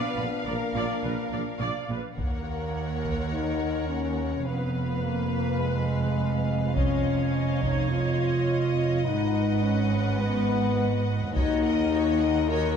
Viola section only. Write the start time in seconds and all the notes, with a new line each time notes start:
Already playing: D5 F5
0.17 B4
0.46 D5
0.75 D5
1.04 B4
1.32 D5
1.61 D5
1.91 B4
2.19 A#4
4.47 B4
6.78 C#5
9.07 B4
11.36 F#4
11.65 A#4
11.94 F#4
12.22 A#4
12.52 F#4